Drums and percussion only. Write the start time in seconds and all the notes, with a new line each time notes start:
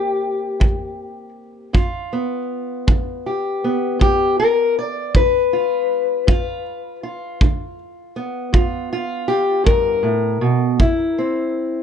0.61 kick
1.75 kick
2.88 kick
4.01 kick
5.15 kick
6.28 kick
7.41 kick
8.54 kick
9.67 kick
10.80 kick